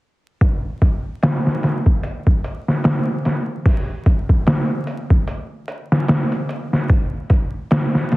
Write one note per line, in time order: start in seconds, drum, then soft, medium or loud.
0.41 kick loud
0.41 closed hi-hat medium
0.82 kick medium
0.82 closed hi-hat medium
1.23 snare loud
1.23 closed hi-hat medium
1.47 snare soft
1.63 snare soft
1.63 closed hi-hat medium
1.86 kick medium
2.03 closed hi-hat medium
2.27 kick medium
2.44 closed hi-hat medium
2.68 snare soft
2.84 snare loud
2.84 closed hi-hat medium
3.25 snare soft
3.25 closed hi-hat medium
3.66 kick loud
3.66 open hi-hat medium
4.06 kick medium
4.06 closed hi-hat medium
4.29 kick medium
4.47 snare loud
4.47 closed hi-hat medium
4.87 closed hi-hat medium
5.10 kick medium
5.28 closed hi-hat medium
5.68 closed hi-hat medium
5.92 snare soft
6.08 snare loud
6.08 closed hi-hat medium
6.32 closed hi-hat soft
6.49 closed hi-hat medium
6.73 snare soft
6.89 kick loud
6.89 closed hi-hat medium
7.30 kick medium
7.30 closed hi-hat medium
7.71 snare loud
7.71 closed hi-hat medium
7.95 snare soft
8.12 snare soft
8.12 closed hi-hat medium